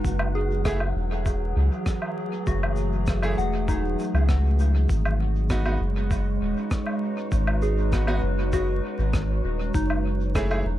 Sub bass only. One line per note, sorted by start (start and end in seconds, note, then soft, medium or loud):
0.04 0.93 F#1 loud
0.96 1.53 E1 loud
1.56 1.70 C#2 medium
2.47 3.35 F#1 loud
3.38 3.96 E1 loud
4.14 4.87 C#2 medium
4.89 5.77 G#1 loud
5.80 6.38 F#1 loud
6.41 6.54 D#1 medium
7.32 8.20 G#1 loud
8.23 8.80 F#1 loud
8.99 9.41 G#1 medium
9.44 9.71 D#1 medium
9.74 10.62 F#1 loud
10.65 10.79 E1 loud